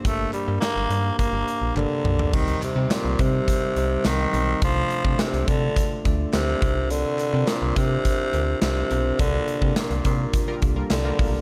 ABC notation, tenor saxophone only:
X:1
M:4/4
L:1/8
Q:1/4=105
K:Cdor
V:1 name="Tenor saxophone" clef=bass
A, G, B,2 B,2 D,2 | E, C, B,, C,3 E,2 | F,2 C, D,2 z C,2 | D,2 B,, C,3 C,2 |
D,2 B,, B,,2 z D,2 |]